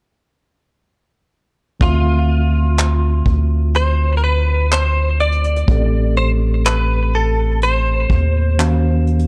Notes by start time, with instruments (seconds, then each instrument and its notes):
1.80 808-style bass D2, tine electric piano D3 A3 C4 F4, clean electric guitar F4, kick, closed hi-hat
1.84 tine electric piano E5
2.77 clap, closed hi-hat
3.26 808-style bass D2, kick
3.74 clean electric guitar C5, closed hi-hat
4.17 clean electric guitar A#4
4.24 clean electric guitar B4
4.71 clean electric guitar C5, clap, closed hi-hat
5.20 clean electric guitar D5, closed hi-hat
5.32 closed hi-hat
5.44 closed hi-hat
5.56 closed hi-hat
5.67 808-style bass A1, tine electric piano A2 A3 C4 G4, kick, closed hi-hat
5.71 tine electric piano A4
6.17 clean electric guitar C5
6.65 clean electric guitar B4, clap, closed hi-hat
7.15 clean electric guitar A4
7.62 clean electric guitar C5, closed hi-hat
8.10 808-style bass D#2, kick
8.58 tine electric piano D#3 A#3 C#4 F#4 F5, clap, closed hi-hat
9.07 closed hi-hat
9.19 closed hi-hat